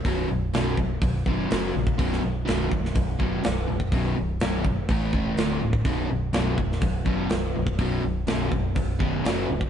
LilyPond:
<<
  \new Staff \with { instrumentName = "Overdriven electric guitar" } { \clef bass \time 4/4 \key b \minor \tempo 4 = 124 <b,, fis, b,>8 <b,, fis,>8 <b,, fis, b,>8 <b,, fis,>8 <b,, fis,>8 <b,, fis, b,>8 <fis, cis fis>8 <fis, cis>8 | <b,, fis, b,>8 <b,, fis,>8 <b,, fis, b,>8 <b,, fis,>8 <b,, fis,>8 <b,, fis, b,>8 <b,, fis,>8 <b,, fis,>8 | <b,, fis, b,>8 <b,, fis,>8 <b,, fis, b,>8 <b,, fis,>8 <a, e a>8 <a, e a>8 <d, a, d>8 <d, a,>8 | <b,, fis, b,>8 <b,, fis,>8 <b,, fis, b,>8 <b,, fis,>8 <b,, fis,>8 <b,, fis, b,>8 <b,, fis,>8 <b,, fis,>8 |
<b,, fis, b,>8 <b,, fis,>8 <b,, fis, b,>8 <b,, fis,>8 <b,, fis,>8 <b,, fis, b,>8 <fis, cis fis>8 <fis, cis>8 | }
  \new Staff \with { instrumentName = "Picked electric bass" } { \clef bass \time 4/4 \key b \minor b,,,8 b,,,8 b,,,8 b,,,8 b,,,8 fis,,8 fis,,8 ais,,8 | b,,,8 b,,,8 b,,,8 b,,,8 b,,,8 fis,,8 b,,,8 b,,,8 | b,,,8 b,,,8 b,,,8 g,,8 a,,8 e,,8 d,,8 d,,8 | b,,,8 b,,,8 b,,,8 b,,,8 b,,,8 fis,,8 b,,,8 b,,,8 |
b,,,8 b,,,8 b,,,8 b,,,8 b,,,8 fis,,8 fis,,8 cis,,8 | }
  \new DrumStaff \with { instrumentName = "Drums" } \drummode { \time 4/4 <hho bd>4 <hho sn>8 bd8 <hho bd>8 bd8 <hho sn>8. bd16 | <hho bd>16 sn8. <hho sn>8 bd16 sn16 <hho bd>8 bd8 <hho sn>8. bd16 | <hho bd>4 <hho sn>8 bd8 <hho bd>8 bd8 <hho sn>8. bd16 | <hho bd>4 <hho sn>8 bd16 sn16 <hho bd>8 bd8 <hho sn>8. bd16 |
<hho bd>4 <hho sn>8 bd8 <hho bd>8 bd8 <hho sn>8. bd16 | }
>>